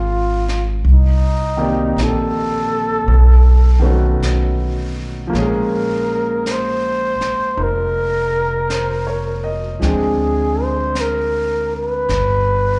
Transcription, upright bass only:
0.00 0.80 G#1 medium
0.85 1.93 C2 medium
1.97 3.05 A#1 medium
3.08 4.16 B1 medium
4.20 5.28 B1 medium
5.33 7.15 A#1 medium
7.20 muted upright bass stroke soft
7.57 9.78 F1 medium
9.82 12.05 D2 medium
12.09 12.79 G1 medium

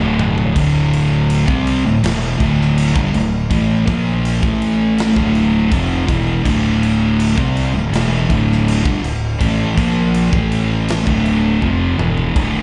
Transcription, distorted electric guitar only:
0.00 0.53 D2 medium
0.00 0.54 A2 loud
0.00 0.54 D3 loud
0.54 1.46 D2 loud
0.54 1.46 A2 medium
0.54 1.46 D3 loud
1.47 1.83 C3 medium
1.47 1.83 G3 loud
1.47 1.83 C4 medium
1.84 2.02 D2 medium
1.84 2.03 A2 medium
2.03 2.38 E2 medium
2.03 2.38 B2 loud
2.03 2.38 E3 loud
2.40 2.93 D2 medium
2.40 2.94 A2 medium
2.40 2.94 D3 medium
2.95 3.12 G2 medium
2.95 3.12 D3 medium
3.13 3.42 D2 medium
3.13 3.43 A2 medium
3.50 3.85 A2 medium
3.50 3.86 E3 loud
3.50 3.86 A3 loud
3.86 4.42 A#2 medium
3.86 4.42 F3 medium
3.86 4.42 A#3 loud
4.42 5.14 A2 medium
4.42 5.14 E3 medium
4.42 5.15 A3 loud
5.15 5.70 D2 medium
5.15 5.70 A2 loud
5.15 5.70 D3 loud
5.70 6.06 F2 medium
5.70 6.06 C3 loud
5.70 6.07 F3 loud
6.06 6.43 E2 medium
6.06 6.43 B2 medium
6.06 6.43 E3 medium
6.43 7.35 D2 loud
6.43 7.35 A2 loud
6.43 7.36 D3 loud
7.37 7.73 C3 medium
7.37 7.73 G3 medium
7.37 7.73 C4 medium
7.74 7.91 D2 medium
7.74 7.92 A2 medium
7.92 8.28 E2 loud
7.92 8.28 B2 loud
7.92 8.28 E3 medium
8.29 8.83 D2 medium
8.29 8.83 A2 loud
8.29 8.82 D3 loud
8.83 9.01 G2 loud
8.83 9.01 D3 loud
9.03 9.32 D2 medium
9.03 9.33 A2 medium
9.39 9.75 A2 loud
9.39 9.75 E3 loud
9.39 9.76 A3 loud
9.76 10.31 A#2 medium
9.76 10.31 F3 loud
9.76 10.31 A#3 medium
10.32 11.05 A2 medium
10.32 11.05 E3 loud
10.32 11.05 A3 medium
11.06 11.60 D2 medium
11.06 11.61 A2 loud
11.06 11.61 D3 loud
11.61 11.97 F2 medium
11.61 11.97 C3 medium
11.61 11.98 F3 loud
11.98 12.34 E2 medium
11.98 12.34 B2 medium
11.98 12.34 E3 loud
12.35 12.62 D2 medium
12.35 12.62 A2 loud
12.35 12.62 D3 loud

